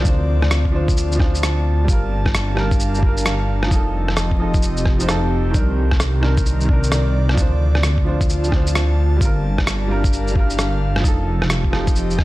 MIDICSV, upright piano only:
0, 0, Header, 1, 2, 480
1, 0, Start_track
1, 0, Tempo, 458015
1, 51, Time_signature, 4, 2, 24, 8
1, 12828, End_track
2, 0, Start_track
2, 0, Title_t, "Upright piano"
2, 0, Program_c, 0, 0
2, 0, Control_c, 0, 64, 127
2, 7, Note_on_c, 0, 53, 76
2, 49, Note_on_c, 0, 62, 70
2, 66, Control_c, 0, 64, 0
2, 91, Note_on_c, 0, 72, 85
2, 263, Control_c, 0, 64, 127
2, 728, Note_off_c, 0, 53, 0
2, 749, Note_off_c, 0, 62, 0
2, 750, Note_on_c, 0, 53, 75
2, 770, Note_off_c, 0, 72, 0
2, 772, Note_on_c, 0, 62, 69
2, 792, Note_on_c, 0, 72, 84
2, 1194, Note_off_c, 0, 53, 0
2, 1209, Note_on_c, 0, 53, 76
2, 1231, Note_off_c, 0, 62, 0
2, 1241, Note_off_c, 0, 72, 0
2, 1251, Note_on_c, 0, 62, 68
2, 1293, Note_on_c, 0, 72, 81
2, 1929, Note_off_c, 0, 53, 0
2, 1932, Note_on_c, 0, 55, 77
2, 1950, Note_off_c, 0, 62, 0
2, 1971, Note_off_c, 0, 72, 0
2, 1975, Note_on_c, 0, 65, 70
2, 1983, Control_c, 0, 64, 0
2, 2015, Note_on_c, 0, 70, 84
2, 2150, Control_c, 0, 64, 127
2, 2651, Note_off_c, 0, 55, 0
2, 2670, Note_on_c, 0, 55, 77
2, 2672, Note_off_c, 0, 65, 0
2, 2692, Note_off_c, 0, 70, 0
2, 2693, Note_on_c, 0, 65, 68
2, 2713, Note_on_c, 0, 70, 83
2, 3110, Note_off_c, 0, 55, 0
2, 3126, Note_on_c, 0, 55, 77
2, 3151, Note_off_c, 0, 65, 0
2, 3161, Note_off_c, 0, 70, 0
2, 3170, Note_on_c, 0, 65, 68
2, 3211, Note_on_c, 0, 70, 82
2, 3848, Note_off_c, 0, 55, 0
2, 3849, Note_on_c, 0, 53, 77
2, 3870, Note_off_c, 0, 65, 0
2, 3890, Note_off_c, 0, 70, 0
2, 3891, Note_on_c, 0, 63, 71
2, 3907, Control_c, 0, 64, 0
2, 3932, Note_on_c, 0, 69, 84
2, 4103, Control_c, 0, 64, 127
2, 4569, Note_off_c, 0, 53, 0
2, 4586, Note_on_c, 0, 53, 72
2, 4590, Note_off_c, 0, 63, 0
2, 4608, Note_on_c, 0, 63, 66
2, 4611, Note_off_c, 0, 69, 0
2, 4629, Note_on_c, 0, 69, 82
2, 5058, Note_off_c, 0, 53, 0
2, 5069, Note_off_c, 0, 63, 0
2, 5079, Note_off_c, 0, 69, 0
2, 5220, Note_on_c, 0, 53, 76
2, 5242, Note_on_c, 0, 63, 73
2, 5262, Note_on_c, 0, 72, 85
2, 5291, Note_off_c, 0, 53, 0
2, 5306, Note_on_c, 0, 53, 88
2, 5310, Note_off_c, 0, 63, 0
2, 5320, Note_off_c, 0, 72, 0
2, 5327, Note_on_c, 0, 63, 81
2, 5348, Note_on_c, 0, 69, 95
2, 5766, Note_on_c, 0, 51, 78
2, 5778, Note_off_c, 0, 53, 0
2, 5788, Note_off_c, 0, 63, 0
2, 5799, Note_off_c, 0, 69, 0
2, 5810, Note_on_c, 0, 62, 70
2, 5825, Control_c, 0, 64, 0
2, 5850, Note_on_c, 0, 70, 83
2, 5986, Control_c, 0, 64, 127
2, 6488, Note_off_c, 0, 51, 0
2, 6508, Note_on_c, 0, 51, 74
2, 6510, Note_off_c, 0, 62, 0
2, 6530, Note_off_c, 0, 70, 0
2, 6530, Note_on_c, 0, 62, 68
2, 6552, Note_on_c, 0, 70, 82
2, 6953, Note_off_c, 0, 51, 0
2, 6969, Note_on_c, 0, 51, 75
2, 6990, Note_off_c, 0, 62, 0
2, 7000, Note_off_c, 0, 70, 0
2, 7010, Note_on_c, 0, 62, 69
2, 7052, Note_on_c, 0, 70, 85
2, 7689, Note_off_c, 0, 51, 0
2, 7690, Note_on_c, 0, 53, 77
2, 7710, Note_off_c, 0, 62, 0
2, 7731, Note_off_c, 0, 70, 0
2, 7732, Note_on_c, 0, 62, 72
2, 7746, Control_c, 0, 64, 0
2, 7773, Note_on_c, 0, 72, 85
2, 7943, Control_c, 0, 64, 127
2, 8410, Note_off_c, 0, 53, 0
2, 8429, Note_on_c, 0, 53, 73
2, 8431, Note_off_c, 0, 62, 0
2, 8450, Note_on_c, 0, 62, 69
2, 8451, Note_off_c, 0, 72, 0
2, 8471, Note_on_c, 0, 72, 82
2, 8872, Note_off_c, 0, 53, 0
2, 8887, Note_on_c, 0, 53, 76
2, 8910, Note_off_c, 0, 62, 0
2, 8920, Note_off_c, 0, 72, 0
2, 8928, Note_on_c, 0, 62, 70
2, 8970, Note_on_c, 0, 72, 83
2, 9605, Note_on_c, 0, 55, 76
2, 9608, Note_off_c, 0, 53, 0
2, 9629, Note_off_c, 0, 62, 0
2, 9647, Note_on_c, 0, 65, 70
2, 9650, Note_off_c, 0, 72, 0
2, 9666, Control_c, 0, 64, 0
2, 9691, Note_on_c, 0, 70, 84
2, 9853, Control_c, 0, 64, 127
2, 10327, Note_off_c, 0, 55, 0
2, 10348, Note_off_c, 0, 65, 0
2, 10349, Note_on_c, 0, 55, 74
2, 10367, Note_on_c, 0, 65, 69
2, 10370, Note_off_c, 0, 70, 0
2, 10390, Note_on_c, 0, 70, 84
2, 10790, Note_off_c, 0, 55, 0
2, 10806, Note_on_c, 0, 55, 76
2, 10828, Note_off_c, 0, 65, 0
2, 10840, Note_off_c, 0, 70, 0
2, 10848, Note_on_c, 0, 65, 72
2, 10889, Note_on_c, 0, 70, 83
2, 11524, Note_on_c, 0, 53, 79
2, 11528, Note_off_c, 0, 55, 0
2, 11549, Note_off_c, 0, 65, 0
2, 11567, Note_on_c, 0, 63, 70
2, 11569, Note_off_c, 0, 70, 0
2, 11587, Control_c, 0, 64, 0
2, 11611, Note_on_c, 0, 69, 84
2, 11741, Control_c, 0, 64, 127
2, 12247, Note_off_c, 0, 53, 0
2, 12268, Note_off_c, 0, 63, 0
2, 12270, Note_on_c, 0, 53, 77
2, 12290, Note_off_c, 0, 69, 0
2, 12291, Note_on_c, 0, 63, 69
2, 12312, Note_on_c, 0, 69, 84
2, 12740, Note_off_c, 0, 53, 0
2, 12750, Note_off_c, 0, 63, 0
2, 12761, Note_off_c, 0, 69, 0
2, 12828, End_track
0, 0, End_of_file